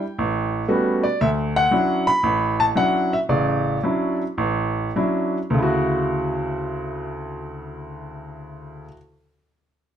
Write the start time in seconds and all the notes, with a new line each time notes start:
Already playing: G5
0.19 A1
0.68 G3 A3 B3 C#4 F#4
1.03 D5
1.21 D2 E5
1.56 F#5
1.71 F#3 C#4 D4 E4
2.07 B5
2.23 A1
2.60 A5
2.75 F#3 C#4 D4 E4 F#5
3.13 E5
3.29 A1 C#3 D5
3.83 F#3 C#4 D4 E4
4.38 A1
4.96 F#3 C#4 D4 E4
5.50 D2 C#3
5.58 E4
5.63 F#4